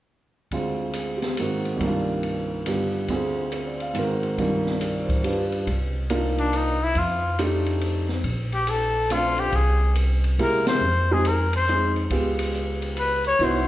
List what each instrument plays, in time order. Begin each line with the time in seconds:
0.51 grand piano D2 D3 G#3 C4 F4, kick, ride
0.93 grand piano G#4, hi-hat pedal, ride
1.17 grand piano G4
1.22 snare, ride
1.37 grand piano G#2 D#3 A#3 C4, hi-hat pedal, ride
1.41 grand piano F#4
1.65 ride
1.76 grand piano C2 G2 D#3, kick
1.80 grand piano A#3, ride
1.85 grand piano D4 F4
2.23 ride
2.66 grand piano G2 D3 B3 F4 G4, hi-hat pedal, ride
3.08 grand piano D2 D3 C4 F4 G#4, kick, ride
3.52 grand piano C5, hi-hat pedal, ride
3.67 grand piano D5
3.80 grand piano F5, ride
3.93 grand piano G#2 D#3 C4, hi-hat pedal, ride
3.97 grand piano F#4 A#4
4.23 ride
4.38 grand piano C2 G2 D#3 D4 F4 A#4, kick, ride
4.66 snare
4.81 grand piano D5, hi-hat pedal, ride
5.03 grand piano C5
5.09 kick, ride
5.23 grand piano G2 G3 D4 F4, ride
5.27 grand piano B4
5.52 ride
5.67 upright bass C2, kick, ride
6.10 grand piano A#3 D4 D#4 F4, hi-hat pedal, ride
6.38 trumpet D4, ride
6.53 trumpet D#4, hi-hat pedal, ride
6.83 trumpet E4
6.95 upright bass F2, trumpet F4, kick, ride
7.39 grand piano A3 D4 D#4 G4, hi-hat pedal, ride
7.66 ride
7.81 ride
8.09 snare
8.24 upright bass A#1, kick, ride
8.52 trumpet G4, ride
8.67 trumpet A4, hi-hat pedal, ride
9.10 grand piano A3 C4 D4 F4, trumpet F4, hi-hat pedal, ride
9.38 trumpet G4, ride
9.52 upright bass C2, trumpet G#4, kick, ride
9.95 hi-hat pedal, ride
10.24 ride
10.38 upright bass C3, grand piano G#3 A#3 E4 G4, trumpet A#4, ride
10.67 trumpet C5, snare, ride
10.81 upright bass F2
11.11 grand piano G#3 C4 D#4 G4, trumpet G#4
11.25 trumpet A#4, hi-hat pedal, ride
11.53 trumpet C5, ride
11.67 grand piano G#3 C4 D#4 G#4, hi-hat pedal
11.96 ride
12.10 upright bass C#2, grand piano G#3 B3 F4 G4, kick, ride
12.39 ride
12.54 hi-hat pedal
12.82 ride
12.97 trumpet B4, hi-hat pedal, ride
13.24 trumpet C#5, ride
13.39 upright bass C2, grand piano B3 D#4 E4 F#4, kick, ride
13.44 trumpet C5